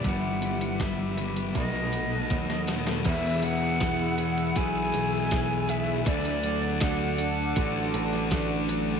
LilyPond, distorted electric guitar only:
\new Staff \with { instrumentName = "Distorted electric guitar" } { \clef bass \time 4/4 \key b \phrygian \tempo 4 = 80 <g, d g>4. <g, d g>8 <b, fis b>4. <b, fis b>8 | \key e \mixolydian <e, b, e>4 <e, b, e>4 <e, b, e>8 <b, e>8 <e, b, e>4 | <d a d'>4 <d a d'>4 <d a d'>8 <a d'>8 <d a d'>4 | }